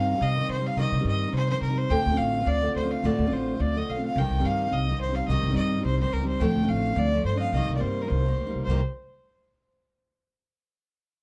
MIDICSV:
0, 0, Header, 1, 4, 480
1, 0, Start_track
1, 0, Tempo, 281558
1, 1320, Time_signature, 4, 2, 24, 8
1, 19133, End_track
2, 0, Start_track
2, 0, Title_t, "Fiddle"
2, 0, Program_c, 0, 110
2, 0, Note_on_c, 0, 77, 106
2, 380, Note_on_c, 0, 75, 127
2, 406, Note_off_c, 0, 77, 0
2, 850, Note_off_c, 0, 75, 0
2, 868, Note_on_c, 0, 72, 104
2, 1132, Note_on_c, 0, 77, 113
2, 1158, Note_off_c, 0, 72, 0
2, 1333, Note_off_c, 0, 77, 0
2, 1344, Note_on_c, 0, 75, 106
2, 1779, Note_off_c, 0, 75, 0
2, 1819, Note_on_c, 0, 75, 111
2, 2256, Note_off_c, 0, 75, 0
2, 2304, Note_on_c, 0, 72, 122
2, 2532, Note_off_c, 0, 72, 0
2, 2541, Note_on_c, 0, 72, 119
2, 2747, Note_off_c, 0, 72, 0
2, 2763, Note_on_c, 0, 70, 101
2, 3023, Note_on_c, 0, 72, 109
2, 3049, Note_off_c, 0, 70, 0
2, 3243, Note_on_c, 0, 79, 127
2, 3269, Note_off_c, 0, 72, 0
2, 3706, Note_on_c, 0, 77, 112
2, 3732, Note_off_c, 0, 79, 0
2, 4203, Note_on_c, 0, 74, 127
2, 4229, Note_off_c, 0, 77, 0
2, 4683, Note_off_c, 0, 74, 0
2, 4712, Note_on_c, 0, 72, 103
2, 4959, Note_on_c, 0, 77, 94
2, 4984, Note_off_c, 0, 72, 0
2, 5206, Note_on_c, 0, 74, 102
2, 5232, Note_off_c, 0, 77, 0
2, 5673, Note_on_c, 0, 72, 95
2, 5698, Note_off_c, 0, 74, 0
2, 6143, Note_on_c, 0, 74, 113
2, 6169, Note_off_c, 0, 72, 0
2, 6431, Note_on_c, 0, 75, 108
2, 6456, Note_off_c, 0, 74, 0
2, 6637, Note_on_c, 0, 77, 95
2, 6663, Note_off_c, 0, 75, 0
2, 6879, Note_off_c, 0, 77, 0
2, 6909, Note_on_c, 0, 77, 108
2, 7133, Note_on_c, 0, 79, 111
2, 7158, Note_off_c, 0, 77, 0
2, 7595, Note_on_c, 0, 77, 105
2, 7620, Note_off_c, 0, 79, 0
2, 8061, Note_on_c, 0, 75, 108
2, 8086, Note_off_c, 0, 77, 0
2, 8522, Note_off_c, 0, 75, 0
2, 8533, Note_on_c, 0, 72, 99
2, 8778, Note_on_c, 0, 77, 96
2, 8803, Note_off_c, 0, 72, 0
2, 8988, Note_off_c, 0, 77, 0
2, 8998, Note_on_c, 0, 75, 111
2, 9449, Note_off_c, 0, 75, 0
2, 9471, Note_on_c, 0, 75, 99
2, 9924, Note_off_c, 0, 75, 0
2, 9968, Note_on_c, 0, 72, 101
2, 10207, Note_off_c, 0, 72, 0
2, 10219, Note_on_c, 0, 72, 111
2, 10441, Note_on_c, 0, 70, 100
2, 10467, Note_off_c, 0, 72, 0
2, 10701, Note_off_c, 0, 70, 0
2, 10708, Note_on_c, 0, 72, 92
2, 10906, Note_on_c, 0, 79, 103
2, 10932, Note_off_c, 0, 72, 0
2, 11395, Note_on_c, 0, 77, 103
2, 11420, Note_off_c, 0, 79, 0
2, 11902, Note_on_c, 0, 74, 127
2, 11928, Note_off_c, 0, 77, 0
2, 12359, Note_off_c, 0, 74, 0
2, 12369, Note_on_c, 0, 72, 93
2, 12568, Note_on_c, 0, 75, 74
2, 12594, Note_off_c, 0, 72, 0
2, 12598, Note_on_c, 0, 77, 104
2, 12624, Note_off_c, 0, 75, 0
2, 12824, Note_on_c, 0, 75, 98
2, 12850, Note_off_c, 0, 77, 0
2, 13202, Note_off_c, 0, 75, 0
2, 13212, Note_on_c, 0, 74, 79
2, 13306, Note_on_c, 0, 72, 84
2, 13331, Note_off_c, 0, 74, 0
2, 13669, Note_on_c, 0, 70, 71
2, 13695, Note_off_c, 0, 72, 0
2, 13778, Note_on_c, 0, 72, 93
2, 13804, Note_off_c, 0, 70, 0
2, 14527, Note_off_c, 0, 72, 0
2, 14733, Note_on_c, 0, 72, 85
2, 14985, Note_off_c, 0, 72, 0
2, 19133, End_track
3, 0, Start_track
3, 0, Title_t, "Steel-string acoustic guitar"
3, 0, Program_c, 1, 25
3, 0, Note_on_c, 1, 48, 58
3, 0, Note_on_c, 1, 51, 60
3, 0, Note_on_c, 1, 55, 57
3, 0, Note_on_c, 1, 60, 72
3, 0, Note_on_c, 1, 63, 71
3, 236, Note_off_c, 1, 63, 0
3, 256, Note_on_c, 1, 63, 50
3, 269, Note_off_c, 1, 55, 0
3, 272, Note_off_c, 1, 48, 0
3, 273, Note_off_c, 1, 51, 0
3, 282, Note_off_c, 1, 60, 0
3, 289, Note_on_c, 1, 60, 55
3, 298, Note_on_c, 1, 55, 50
3, 600, Note_off_c, 1, 55, 0
3, 603, Note_on_c, 1, 51, 60
3, 620, Note_on_c, 1, 55, 60
3, 621, Note_off_c, 1, 63, 0
3, 632, Note_off_c, 1, 60, 0
3, 652, Note_on_c, 1, 63, 70
3, 653, Note_on_c, 1, 60, 69
3, 961, Note_off_c, 1, 51, 0
3, 970, Note_off_c, 1, 55, 0
3, 970, Note_off_c, 1, 63, 0
3, 986, Note_off_c, 1, 60, 0
3, 991, Note_on_c, 1, 63, 56
3, 1020, Note_on_c, 1, 60, 63
3, 1044, Note_on_c, 1, 55, 53
3, 1309, Note_on_c, 1, 48, 92
3, 1321, Note_off_c, 1, 55, 0
3, 1323, Note_on_c, 1, 51, 89
3, 1329, Note_off_c, 1, 60, 0
3, 1331, Note_off_c, 1, 63, 0
3, 1341, Note_on_c, 1, 55, 106
3, 1350, Note_on_c, 1, 60, 105
3, 1353, Note_on_c, 1, 63, 93
3, 1674, Note_off_c, 1, 63, 0
3, 1682, Note_off_c, 1, 60, 0
3, 1683, Note_off_c, 1, 48, 0
3, 1690, Note_off_c, 1, 51, 0
3, 1694, Note_off_c, 1, 55, 0
3, 1695, Note_on_c, 1, 63, 75
3, 1702, Note_on_c, 1, 60, 64
3, 1714, Note_on_c, 1, 55, 70
3, 1718, Note_on_c, 1, 51, 60
3, 1731, Note_on_c, 1, 48, 58
3, 2153, Note_off_c, 1, 63, 0
3, 2173, Note_on_c, 1, 63, 61
3, 2181, Note_off_c, 1, 55, 0
3, 2183, Note_off_c, 1, 51, 0
3, 2190, Note_off_c, 1, 48, 0
3, 2191, Note_off_c, 1, 60, 0
3, 2198, Note_on_c, 1, 60, 56
3, 2227, Note_on_c, 1, 55, 43
3, 2527, Note_on_c, 1, 51, 60
3, 2540, Note_off_c, 1, 63, 0
3, 2542, Note_off_c, 1, 55, 0
3, 2552, Note_off_c, 1, 60, 0
3, 2562, Note_on_c, 1, 55, 57
3, 2572, Note_on_c, 1, 60, 69
3, 2593, Note_on_c, 1, 63, 69
3, 2873, Note_off_c, 1, 63, 0
3, 2884, Note_off_c, 1, 51, 0
3, 2893, Note_on_c, 1, 63, 68
3, 2901, Note_off_c, 1, 55, 0
3, 2907, Note_off_c, 1, 60, 0
3, 2930, Note_on_c, 1, 60, 55
3, 2951, Note_on_c, 1, 55, 44
3, 3239, Note_on_c, 1, 38, 76
3, 3243, Note_off_c, 1, 63, 0
3, 3248, Note_on_c, 1, 45, 92
3, 3252, Note_on_c, 1, 50, 94
3, 3254, Note_off_c, 1, 55, 0
3, 3255, Note_off_c, 1, 60, 0
3, 3260, Note_on_c, 1, 57, 108
3, 3273, Note_on_c, 1, 65, 104
3, 3276, Note_on_c, 1, 60, 105
3, 3584, Note_off_c, 1, 65, 0
3, 3596, Note_off_c, 1, 57, 0
3, 3599, Note_off_c, 1, 60, 0
3, 3605, Note_on_c, 1, 65, 73
3, 3609, Note_off_c, 1, 38, 0
3, 3613, Note_off_c, 1, 45, 0
3, 3616, Note_off_c, 1, 50, 0
3, 3616, Note_on_c, 1, 57, 72
3, 3619, Note_on_c, 1, 60, 73
3, 3635, Note_on_c, 1, 50, 73
3, 3639, Note_on_c, 1, 38, 55
3, 3643, Note_on_c, 1, 45, 57
3, 4064, Note_off_c, 1, 65, 0
3, 4084, Note_on_c, 1, 65, 56
3, 4094, Note_off_c, 1, 57, 0
3, 4095, Note_off_c, 1, 60, 0
3, 4102, Note_on_c, 1, 60, 61
3, 4103, Note_off_c, 1, 50, 0
3, 4105, Note_off_c, 1, 38, 0
3, 4107, Note_off_c, 1, 45, 0
3, 4128, Note_on_c, 1, 57, 51
3, 4146, Note_on_c, 1, 50, 50
3, 4423, Note_off_c, 1, 50, 0
3, 4443, Note_on_c, 1, 50, 62
3, 4449, Note_off_c, 1, 57, 0
3, 4457, Note_off_c, 1, 65, 0
3, 4466, Note_off_c, 1, 60, 0
3, 4470, Note_on_c, 1, 57, 66
3, 4485, Note_on_c, 1, 60, 66
3, 4506, Note_on_c, 1, 65, 65
3, 4796, Note_off_c, 1, 65, 0
3, 4803, Note_off_c, 1, 50, 0
3, 4817, Note_off_c, 1, 57, 0
3, 4817, Note_off_c, 1, 60, 0
3, 4817, Note_on_c, 1, 65, 58
3, 4838, Note_on_c, 1, 60, 58
3, 4857, Note_on_c, 1, 57, 49
3, 4860, Note_on_c, 1, 50, 52
3, 5166, Note_off_c, 1, 65, 0
3, 5168, Note_off_c, 1, 50, 0
3, 5176, Note_off_c, 1, 60, 0
3, 5177, Note_on_c, 1, 38, 93
3, 5179, Note_off_c, 1, 57, 0
3, 5184, Note_on_c, 1, 45, 89
3, 5189, Note_on_c, 1, 50, 93
3, 5199, Note_on_c, 1, 57, 100
3, 5201, Note_on_c, 1, 60, 90
3, 5209, Note_on_c, 1, 65, 110
3, 5531, Note_off_c, 1, 65, 0
3, 5539, Note_off_c, 1, 38, 0
3, 5543, Note_off_c, 1, 45, 0
3, 5545, Note_off_c, 1, 50, 0
3, 5546, Note_off_c, 1, 60, 0
3, 5547, Note_off_c, 1, 57, 0
3, 5552, Note_on_c, 1, 65, 75
3, 5566, Note_on_c, 1, 60, 81
3, 5568, Note_on_c, 1, 57, 65
3, 5576, Note_on_c, 1, 50, 67
3, 5588, Note_on_c, 1, 45, 67
3, 5591, Note_on_c, 1, 38, 60
3, 6023, Note_off_c, 1, 65, 0
3, 6031, Note_off_c, 1, 57, 0
3, 6035, Note_off_c, 1, 50, 0
3, 6041, Note_off_c, 1, 45, 0
3, 6041, Note_on_c, 1, 65, 50
3, 6042, Note_off_c, 1, 38, 0
3, 6056, Note_off_c, 1, 60, 0
3, 6063, Note_on_c, 1, 60, 53
3, 6077, Note_on_c, 1, 57, 45
3, 6091, Note_on_c, 1, 50, 51
3, 6373, Note_off_c, 1, 50, 0
3, 6391, Note_off_c, 1, 57, 0
3, 6393, Note_on_c, 1, 50, 58
3, 6396, Note_off_c, 1, 65, 0
3, 6407, Note_off_c, 1, 60, 0
3, 6412, Note_on_c, 1, 57, 60
3, 6430, Note_on_c, 1, 60, 71
3, 6438, Note_on_c, 1, 65, 70
3, 6740, Note_off_c, 1, 50, 0
3, 6744, Note_off_c, 1, 65, 0
3, 6749, Note_off_c, 1, 57, 0
3, 6758, Note_off_c, 1, 60, 0
3, 6765, Note_on_c, 1, 65, 62
3, 6786, Note_on_c, 1, 60, 58
3, 6811, Note_on_c, 1, 57, 57
3, 6828, Note_on_c, 1, 50, 50
3, 7101, Note_off_c, 1, 65, 0
3, 7112, Note_off_c, 1, 60, 0
3, 7121, Note_on_c, 1, 48, 94
3, 7124, Note_off_c, 1, 57, 0
3, 7133, Note_off_c, 1, 50, 0
3, 7141, Note_on_c, 1, 51, 87
3, 7148, Note_on_c, 1, 55, 91
3, 7159, Note_on_c, 1, 60, 88
3, 7163, Note_on_c, 1, 63, 98
3, 7472, Note_off_c, 1, 48, 0
3, 7477, Note_off_c, 1, 60, 0
3, 7478, Note_off_c, 1, 63, 0
3, 7482, Note_off_c, 1, 51, 0
3, 7486, Note_off_c, 1, 55, 0
3, 7498, Note_on_c, 1, 60, 74
3, 7498, Note_on_c, 1, 63, 78
3, 7515, Note_on_c, 1, 55, 72
3, 7523, Note_on_c, 1, 51, 68
3, 7531, Note_on_c, 1, 48, 55
3, 7934, Note_off_c, 1, 63, 0
3, 7954, Note_on_c, 1, 63, 60
3, 7966, Note_off_c, 1, 55, 0
3, 7969, Note_off_c, 1, 51, 0
3, 7974, Note_off_c, 1, 48, 0
3, 7978, Note_off_c, 1, 60, 0
3, 7985, Note_on_c, 1, 60, 59
3, 8002, Note_on_c, 1, 55, 48
3, 8314, Note_off_c, 1, 63, 0
3, 8327, Note_on_c, 1, 51, 58
3, 8329, Note_off_c, 1, 60, 0
3, 8331, Note_off_c, 1, 55, 0
3, 8352, Note_on_c, 1, 55, 59
3, 8365, Note_on_c, 1, 60, 72
3, 8380, Note_on_c, 1, 63, 68
3, 8649, Note_off_c, 1, 63, 0
3, 8667, Note_off_c, 1, 51, 0
3, 8669, Note_on_c, 1, 63, 60
3, 8679, Note_off_c, 1, 55, 0
3, 8686, Note_off_c, 1, 60, 0
3, 8708, Note_on_c, 1, 60, 51
3, 8734, Note_on_c, 1, 55, 61
3, 9014, Note_off_c, 1, 63, 0
3, 9017, Note_off_c, 1, 55, 0
3, 9021, Note_on_c, 1, 48, 89
3, 9024, Note_off_c, 1, 60, 0
3, 9035, Note_on_c, 1, 51, 90
3, 9037, Note_on_c, 1, 55, 114
3, 9045, Note_on_c, 1, 60, 91
3, 9063, Note_on_c, 1, 63, 98
3, 9354, Note_off_c, 1, 63, 0
3, 9368, Note_off_c, 1, 60, 0
3, 9369, Note_off_c, 1, 55, 0
3, 9374, Note_on_c, 1, 63, 80
3, 9383, Note_off_c, 1, 48, 0
3, 9389, Note_on_c, 1, 60, 76
3, 9390, Note_off_c, 1, 51, 0
3, 9390, Note_on_c, 1, 55, 66
3, 9406, Note_on_c, 1, 48, 60
3, 9408, Note_on_c, 1, 51, 72
3, 9835, Note_off_c, 1, 63, 0
3, 9856, Note_on_c, 1, 63, 61
3, 9863, Note_off_c, 1, 55, 0
3, 9871, Note_off_c, 1, 48, 0
3, 9872, Note_off_c, 1, 51, 0
3, 9883, Note_off_c, 1, 60, 0
3, 9889, Note_on_c, 1, 60, 57
3, 9912, Note_on_c, 1, 55, 57
3, 10224, Note_off_c, 1, 63, 0
3, 10232, Note_off_c, 1, 55, 0
3, 10241, Note_off_c, 1, 60, 0
3, 10244, Note_on_c, 1, 51, 67
3, 10253, Note_on_c, 1, 55, 60
3, 10278, Note_on_c, 1, 60, 66
3, 10287, Note_on_c, 1, 63, 63
3, 10560, Note_off_c, 1, 63, 0
3, 10581, Note_on_c, 1, 63, 59
3, 10585, Note_off_c, 1, 51, 0
3, 10586, Note_off_c, 1, 60, 0
3, 10590, Note_off_c, 1, 55, 0
3, 10606, Note_on_c, 1, 60, 62
3, 10635, Note_on_c, 1, 55, 52
3, 10914, Note_on_c, 1, 38, 93
3, 10923, Note_off_c, 1, 55, 0
3, 10923, Note_on_c, 1, 45, 108
3, 10929, Note_off_c, 1, 63, 0
3, 10930, Note_on_c, 1, 57, 109
3, 10931, Note_off_c, 1, 60, 0
3, 10932, Note_on_c, 1, 53, 91
3, 10951, Note_on_c, 1, 60, 92
3, 10951, Note_on_c, 1, 62, 95
3, 11277, Note_off_c, 1, 62, 0
3, 11286, Note_off_c, 1, 60, 0
3, 11288, Note_off_c, 1, 38, 0
3, 11293, Note_off_c, 1, 45, 0
3, 11297, Note_off_c, 1, 57, 0
3, 11297, Note_on_c, 1, 62, 63
3, 11298, Note_off_c, 1, 53, 0
3, 11306, Note_on_c, 1, 60, 80
3, 11315, Note_on_c, 1, 57, 71
3, 11324, Note_on_c, 1, 45, 66
3, 11325, Note_on_c, 1, 53, 65
3, 11326, Note_on_c, 1, 38, 56
3, 11758, Note_off_c, 1, 62, 0
3, 11778, Note_on_c, 1, 62, 53
3, 11784, Note_off_c, 1, 57, 0
3, 11788, Note_off_c, 1, 60, 0
3, 11789, Note_off_c, 1, 45, 0
3, 11789, Note_off_c, 1, 53, 0
3, 11790, Note_off_c, 1, 38, 0
3, 11794, Note_on_c, 1, 60, 54
3, 11815, Note_on_c, 1, 57, 55
3, 11836, Note_on_c, 1, 53, 41
3, 12126, Note_off_c, 1, 53, 0
3, 12144, Note_off_c, 1, 62, 0
3, 12146, Note_on_c, 1, 53, 70
3, 12152, Note_off_c, 1, 57, 0
3, 12152, Note_off_c, 1, 60, 0
3, 12173, Note_on_c, 1, 57, 69
3, 12183, Note_on_c, 1, 60, 64
3, 12191, Note_on_c, 1, 62, 76
3, 12495, Note_off_c, 1, 53, 0
3, 12508, Note_off_c, 1, 57, 0
3, 12512, Note_off_c, 1, 62, 0
3, 12514, Note_off_c, 1, 60, 0
3, 12533, Note_on_c, 1, 62, 58
3, 12548, Note_on_c, 1, 60, 60
3, 12568, Note_on_c, 1, 57, 51
3, 12582, Note_on_c, 1, 53, 51
3, 12858, Note_on_c, 1, 48, 98
3, 12864, Note_off_c, 1, 62, 0
3, 12871, Note_off_c, 1, 60, 0
3, 12880, Note_off_c, 1, 53, 0
3, 12881, Note_off_c, 1, 57, 0
3, 12887, Note_on_c, 1, 51, 89
3, 12888, Note_on_c, 1, 55, 95
3, 12904, Note_on_c, 1, 63, 99
3, 12907, Note_on_c, 1, 58, 87
3, 13219, Note_off_c, 1, 48, 0
3, 13234, Note_off_c, 1, 51, 0
3, 13234, Note_off_c, 1, 55, 0
3, 13234, Note_off_c, 1, 63, 0
3, 13244, Note_off_c, 1, 58, 0
3, 13254, Note_on_c, 1, 63, 70
3, 13262, Note_on_c, 1, 58, 71
3, 13278, Note_on_c, 1, 51, 69
3, 13278, Note_on_c, 1, 55, 64
3, 13296, Note_on_c, 1, 48, 61
3, 13705, Note_off_c, 1, 63, 0
3, 13712, Note_on_c, 1, 63, 57
3, 13734, Note_off_c, 1, 48, 0
3, 13742, Note_off_c, 1, 58, 0
3, 13749, Note_on_c, 1, 58, 52
3, 13755, Note_off_c, 1, 55, 0
3, 13762, Note_on_c, 1, 55, 44
3, 14066, Note_off_c, 1, 55, 0
3, 14070, Note_off_c, 1, 63, 0
3, 14072, Note_off_c, 1, 51, 0
3, 14079, Note_on_c, 1, 51, 65
3, 14086, Note_on_c, 1, 55, 62
3, 14088, Note_off_c, 1, 58, 0
3, 14121, Note_on_c, 1, 58, 65
3, 14125, Note_on_c, 1, 63, 69
3, 14414, Note_off_c, 1, 63, 0
3, 14420, Note_off_c, 1, 51, 0
3, 14424, Note_off_c, 1, 55, 0
3, 14435, Note_on_c, 1, 63, 68
3, 14441, Note_off_c, 1, 58, 0
3, 14465, Note_on_c, 1, 58, 61
3, 14485, Note_on_c, 1, 55, 52
3, 14773, Note_off_c, 1, 63, 0
3, 14788, Note_off_c, 1, 58, 0
3, 14799, Note_off_c, 1, 55, 0
3, 14806, Note_on_c, 1, 48, 91
3, 14824, Note_on_c, 1, 51, 88
3, 14827, Note_on_c, 1, 55, 108
3, 14828, Note_on_c, 1, 58, 98
3, 14840, Note_on_c, 1, 63, 107
3, 14989, Note_off_c, 1, 48, 0
3, 14998, Note_off_c, 1, 51, 0
3, 15000, Note_off_c, 1, 55, 0
3, 15000, Note_off_c, 1, 58, 0
3, 15006, Note_off_c, 1, 63, 0
3, 19133, End_track
4, 0, Start_track
4, 0, Title_t, "Upright bass"
4, 0, Program_c, 2, 32
4, 0, Note_on_c, 2, 43, 87
4, 245, Note_off_c, 2, 43, 0
4, 355, Note_on_c, 2, 48, 123
4, 722, Note_off_c, 2, 48, 0
4, 824, Note_on_c, 2, 48, 76
4, 1195, Note_off_c, 2, 48, 0
4, 1302, Note_on_c, 2, 48, 96
4, 1407, Note_off_c, 2, 48, 0
4, 1566, Note_on_c, 2, 48, 101
4, 1740, Note_off_c, 2, 48, 0
4, 1779, Note_on_c, 2, 43, 92
4, 2153, Note_off_c, 2, 43, 0
4, 2258, Note_on_c, 2, 48, 108
4, 2632, Note_off_c, 2, 48, 0
4, 2745, Note_on_c, 2, 48, 91
4, 3116, Note_off_c, 2, 48, 0
4, 3236, Note_on_c, 2, 38, 112
4, 3336, Note_off_c, 2, 38, 0
4, 3504, Note_on_c, 2, 38, 109
4, 3671, Note_off_c, 2, 38, 0
4, 3720, Note_on_c, 2, 33, 104
4, 4087, Note_off_c, 2, 33, 0
4, 4192, Note_on_c, 2, 38, 106
4, 4562, Note_off_c, 2, 38, 0
4, 4684, Note_on_c, 2, 38, 79
4, 5049, Note_off_c, 2, 38, 0
4, 5158, Note_on_c, 2, 38, 102
4, 5258, Note_off_c, 2, 38, 0
4, 5426, Note_on_c, 2, 38, 112
4, 5594, Note_off_c, 2, 38, 0
4, 5654, Note_on_c, 2, 33, 93
4, 6016, Note_off_c, 2, 33, 0
4, 6131, Note_on_c, 2, 38, 109
4, 6495, Note_off_c, 2, 38, 0
4, 6615, Note_on_c, 2, 35, 67
4, 6977, Note_off_c, 2, 35, 0
4, 7087, Note_on_c, 2, 36, 126
4, 7185, Note_off_c, 2, 36, 0
4, 7335, Note_on_c, 2, 36, 99
4, 7508, Note_off_c, 2, 36, 0
4, 7559, Note_on_c, 2, 43, 91
4, 7927, Note_off_c, 2, 43, 0
4, 8047, Note_on_c, 2, 36, 105
4, 8413, Note_off_c, 2, 36, 0
4, 8523, Note_on_c, 2, 36, 74
4, 8890, Note_off_c, 2, 36, 0
4, 9000, Note_on_c, 2, 36, 103
4, 9101, Note_off_c, 2, 36, 0
4, 9259, Note_on_c, 2, 36, 116
4, 9430, Note_off_c, 2, 36, 0
4, 9468, Note_on_c, 2, 43, 97
4, 9840, Note_off_c, 2, 43, 0
4, 9966, Note_on_c, 2, 36, 105
4, 10332, Note_off_c, 2, 36, 0
4, 10435, Note_on_c, 2, 37, 78
4, 10805, Note_off_c, 2, 37, 0
4, 10911, Note_on_c, 2, 38, 104
4, 11014, Note_off_c, 2, 38, 0
4, 11174, Note_on_c, 2, 38, 96
4, 11347, Note_off_c, 2, 38, 0
4, 11396, Note_on_c, 2, 33, 106
4, 11765, Note_off_c, 2, 33, 0
4, 11865, Note_on_c, 2, 38, 118
4, 12237, Note_off_c, 2, 38, 0
4, 12348, Note_on_c, 2, 43, 77
4, 12719, Note_off_c, 2, 43, 0
4, 12827, Note_on_c, 2, 36, 112
4, 12932, Note_off_c, 2, 36, 0
4, 13090, Note_on_c, 2, 36, 104
4, 13263, Note_off_c, 2, 36, 0
4, 13333, Note_on_c, 2, 43, 82
4, 13694, Note_off_c, 2, 43, 0
4, 13809, Note_on_c, 2, 36, 112
4, 14171, Note_off_c, 2, 36, 0
4, 14275, Note_on_c, 2, 38, 74
4, 14509, Note_off_c, 2, 38, 0
4, 14557, Note_on_c, 2, 36, 78
4, 14749, Note_off_c, 2, 36, 0
4, 14779, Note_on_c, 2, 36, 107
4, 15010, Note_off_c, 2, 36, 0
4, 19133, End_track
0, 0, End_of_file